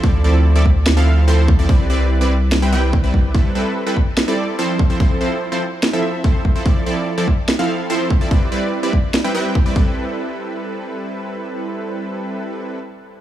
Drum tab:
SD |----o---|----o---|----o---|----o---|
BD |o--o---o|o-----oo|o--o---o|o-----oo|

SD |----o---|----o---|--------|--------|
BD |o--o---o|o--o--oo|--------|--------|